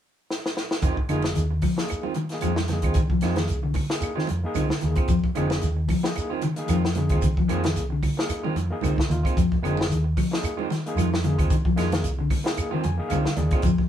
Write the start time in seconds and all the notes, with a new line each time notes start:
0.31 snare
0.46 snare
0.57 snare
0.71 snare
0.81 F1 D#3 G#3 C4 F4, muted clean electric guitar stroke, kick, closed hi-hat, low conga, shekere
0.97 muted fingered electric bass stroke, muted clean electric guitar stroke, kick
1.09 F1 D3 D#3 G#3 A#3 D#4 F4 G#4, closed hi-hat, claves, shekere
1.22 muted clean electric guitar stroke, snare, high conga
1.35 D#2 D#3, closed hi-hat, shekere
1.50 muted clean electric guitar stroke
1.62 F3, kick, open hi-hat, high conga, low conga, claves, shekere
1.77 A#3 D#4 G#4, muted clean electric guitar stroke, snare
1.88 muted clean electric guitar stroke, closed hi-hat, claves, shekere
2.03 D#3 C4 F4, high conga
2.14 D#3, muted clean electric guitar stroke, closed hi-hat, high conga, shekere
2.29 A#3 D#4, snare, closed hi-hat
2.34 G#4
2.41 F2 F3 G#3 C4 F4, closed hi-hat, high conga, claves, shekere
2.56 muted clean electric guitar stroke, snare, high conga
2.67 A#3, muted clean electric guitar stroke, snare, closed hi-hat, high conga, low conga, shekere
2.72 D#4 G#4
2.82 D#2 G#3 C4 F4, kick, closed hi-hat, high conga, claves
2.94 C2 D#3, kick, closed hi-hat, low conga, shekere
3.10 F3, muted clean electric guitar stroke, kick
3.21 F2 D#3 G#3 A#3 C4 D#4 F4, snare, closed hi-hat, claves, shekere
3.25 G#4
3.36 D#3, muted clean electric guitar stroke, snare, closed hi-hat, high conga
3.48 C2, closed hi-hat, shekere
3.63 D3, muted clean electric guitar stroke
3.74 kick, open hi-hat, high conga, low conga, claves, shekere
3.90 A#3 D#4 G#4, muted clean electric guitar stroke, snare
4.01 muted clean electric guitar stroke, closed hi-hat, claves, shekere
4.15 D#3 G#3 C4 F4, snare
4.27 F2, muted clean electric guitar stroke, closed hi-hat, high conga, shekere
4.44 A#3 D#4 G#4
4.55 C2 D3 D#3 G#3 C4 F4, closed hi-hat, high conga, claves, shekere
4.69 muted clean electric guitar stroke, snare, high conga
4.81 D#2 A#3 D#4 G#4, muted clean electric guitar stroke, closed hi-hat, low conga, shekere
4.96 C4 F4, muted clean electric guitar stroke, kick, closed hi-hat, claves
5.08 F1 F3, kick, closed hi-hat, shekere
5.24 muted clean electric guitar stroke, muted fingered electric bass stroke, kick
5.35 F1 D3 D#3 G#3 A#3 C4 D#4 F4 G#4, closed hi-hat, claves, shekere
5.50 muted clean electric guitar stroke, snare, high conga
5.62 D#2 D#3, closed hi-hat, shekere
5.77 muted clean electric guitar stroke
5.88 F3, kick, open hi-hat, high conga, low conga, claves, shekere
6.03 A#3 D#4 G#4, muted clean electric guitar stroke, snare
6.15 muted clean electric guitar stroke, closed hi-hat, claves, shekere
6.30 D#3 G#3 C4 F4
6.42 D#3, muted clean electric guitar stroke, closed hi-hat, high conga, low conga, shekere
6.56 A#3 D#4 G#4, closed hi-hat
6.68 F2 D#3 F3 G#3 C4 F4, closed hi-hat, high conga, claves, shekere
6.84 muted clean electric guitar stroke, snare
6.95 D3 A#3 D#4 G#4, muted clean electric guitar stroke, closed hi-hat, high conga, low conga, shekere
7.09 D#2 G#3 C4 F4, kick, closed hi-hat, high conga, claves
7.22 C2 D#3, kick, closed hi-hat, low conga, shekere
7.37 F3, muted clean electric guitar stroke, kick
7.48 F2 D#3 G#3 A#3 C4 D#4 F4 G#4, closed hi-hat, claves, shekere
7.63 D#3, muted clean electric guitar stroke, snare, closed hi-hat, high conga
7.75 C2, closed hi-hat, shekere
7.90 D3, muted clean electric guitar stroke
8.03 kick, open hi-hat, high conga, low conga, claves, shekere
8.17 A#3 D#4 G#4, muted clean electric guitar stroke, snare
8.29 muted clean electric guitar stroke, closed hi-hat, claves, shekere
8.43 D#3 G#3 C4 F4, high conga
8.56 F2, muted clean electric guitar stroke, closed hi-hat, high conga, shekere
8.70 A#3 D#4 G#4
8.81 C2 D3 D#3 G#3 C4 F4, closed hi-hat, high conga, claves, shekere
8.96 muted clean electric guitar stroke, kick, snare, high conga
9.09 D#2 A#3 D#4 F4, muted clean electric guitar stroke, closed hi-hat, low conga, shekere
9.23 G#3 C4 F4, kick, closed hi-hat, claves
9.37 F1 F3, kick, closed hi-hat, shekere
9.52 muted fingered electric bass stroke, muted clean electric guitar stroke, kick
9.62 F1 D3 D#3 G#3 A#3 C4 D#4 F4 G#4, closed hi-hat, claves, shekere
9.77 muted clean electric guitar stroke, snare, high conga
9.89 D#2 D#3, closed hi-hat, shekere
10.04 muted clean electric guitar stroke
10.17 F3, kick, open hi-hat, high conga, low conga, claves, shekere
10.31 A#3 D#4 G#4, muted clean electric guitar stroke, snare
10.43 muted clean electric guitar stroke, closed hi-hat, claves, shekere
10.57 D#3 G#3 C4 F4, high conga
10.70 D#3, muted clean electric guitar stroke, snare, closed hi-hat, high conga, shekere
10.86 A#3 D#4 G#4, closed hi-hat
10.95 F2 D#3 F3 G#3 F4, closed hi-hat, high conga, claves, shekere
11.11 muted clean electric guitar stroke, snare, high conga
11.23 D3 A#3 D#4 G#4, muted clean electric guitar stroke, closed hi-hat, high conga, low conga, shekere
11.38 D#2 G#3 C4 F4, kick, closed hi-hat, claves
11.50 C2 D#3, kick, closed hi-hat, shekere
11.65 F3, muted clean electric guitar stroke, kick
11.76 F2 D#3 G#3 A#3 D#4 F4 G#4, muted clean electric guitar stroke, snare, closed hi-hat, claves, shekere
11.92 D#3, muted clean electric guitar stroke, snare, closed hi-hat, high conga
12.03 C2, closed hi-hat, shekere
12.19 D3, muted clean electric guitar stroke
12.30 kick, open hi-hat, high conga, low conga, claves, shekere
12.44 A#3 D#4 G#4, muted clean electric guitar stroke, snare
12.56 muted clean electric guitar stroke, closed hi-hat, claves, shekere
12.71 D#3 G#3 C4 F4
12.84 F2 G#5, muted clean electric guitar stroke, closed hi-hat, high conga, low conga, shekere
12.97 A#3 D#4 G#4
13.09 C2 D3 D#3 G#3 C4 F4 F5, closed hi-hat, high conga, claves, shekere
13.25 muted clean electric guitar stroke, snare, high conga
13.36 D#2 A#3 D#4 G#4 D5, muted clean electric guitar stroke, closed hi-hat, high conga, low conga, shekere
13.51 G#3 C4 F4, kick, closed hi-hat, claves
13.62 F1 F3, kick, closed hi-hat, low conga, shekere
13.78 muted clean electric guitar stroke, muted fingered electric bass stroke, kick